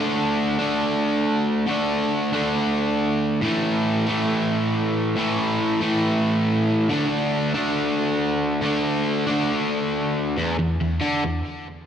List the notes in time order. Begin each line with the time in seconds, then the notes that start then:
Already playing: D3 A3 D4
0.59 A3 D4
0.63 D3
1.67 D3 A3 D4
2.33 D3 A3 D4
3.41 A2 E3 A3
4.07 E3 A3
4.11 A2
5.16 A2 E3 A3
5.80 A2 E3 A3
6.89 D3 A3 D4
7.54 D3 A3 D4
8.62 D3 A3
8.66 D4
9.27 D3 A3 D4
10.37 E2
10.59 E2
10.81 E2
11.01 D3
11.24 E2